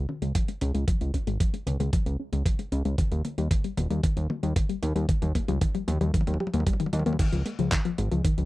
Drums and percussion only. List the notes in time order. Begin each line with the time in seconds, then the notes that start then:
0.09 high tom
0.22 closed hi-hat
0.35 kick, closed hi-hat
0.48 closed hi-hat
0.61 closed hi-hat, mid tom
0.75 closed hi-hat
0.88 kick, closed hi-hat, mid tom
1.01 closed hi-hat
1.14 kick, closed hi-hat
1.27 closed hi-hat
1.40 kick, closed hi-hat
1.54 closed hi-hat
1.67 closed hi-hat, mid tom, high tom
1.80 closed hi-hat, high tom
1.93 kick, closed hi-hat, mid tom
2.06 closed hi-hat
2.33 closed hi-hat, mid tom
2.46 kick, closed hi-hat
2.59 closed hi-hat
2.72 closed hi-hat, mid tom
2.85 closed hi-hat
2.98 kick, closed hi-hat, mid tom, high tom
3.12 closed hi-hat
3.25 closed hi-hat, mid tom
3.38 closed hi-hat
3.51 kick, closed hi-hat, mid tom
3.64 closed hi-hat
3.77 closed hi-hat, mid tom, high tom
3.91 closed hi-hat, high tom
4.03 kick, closed hi-hat, mid tom
4.17 closed hi-hat
4.30 mid tom, high tom
4.43 closed hi-hat
4.56 kick, closed hi-hat, mid tom
4.69 closed hi-hat
4.83 closed hi-hat, mid tom
4.96 closed hi-hat
5.09 kick, closed hi-hat, mid tom
5.22 closed hi-hat, mid tom
5.35 kick, closed hi-hat, mid tom
5.48 closed hi-hat, mid tom
5.61 kick, closed hi-hat, mid tom
5.75 closed hi-hat, mid tom
5.88 closed hi-hat, mid tom, high tom
6.01 closed hi-hat, mid tom, high tom
6.14 kick, closed hi-hat, mid tom
6.21 mid tom
6.27 closed hi-hat, mid tom
6.34 mid tom
6.40 mid tom
6.47 mid tom
6.54 closed hi-hat, mid tom
6.60 mid tom
6.67 kick, closed hi-hat, mid tom
6.73 mid tom
6.80 closed hi-hat, mid tom
6.86 mid tom
6.93 closed hi-hat, mid tom
6.99 mid tom
7.06 closed hi-hat, mid tom
7.13 mid tom
7.19 kick, closed hi-hat, high tom, crash
7.33 closed hi-hat
7.46 closed hi-hat
7.59 closed hi-hat
7.72 kick, clap, closed hi-hat
7.85 closed hi-hat
7.98 closed hi-hat, high tom
8.12 closed hi-hat, high tom
8.25 kick, closed hi-hat
8.38 closed hi-hat